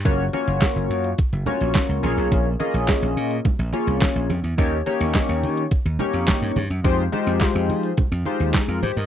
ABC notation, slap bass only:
X:1
M:4/4
L:1/16
Q:1/4=106
K:Fm
V:1 name="Slap bass" clef=bass
_G,,,2 z G,,, z G,,, _G,,2 z G,,, z B,,, z D,, B,,, =B,,, | B,,,2 z B,,, z B,,, B,,2 z B,,, z C,, z B,,, F,, =E,, | E,,2 z E,, z E,, E,2 z E,, z F,, z G,, G,, _G,, | F,,2 z F,, z F,, F,2 z F,, z E,, z F,, A,, G,, |]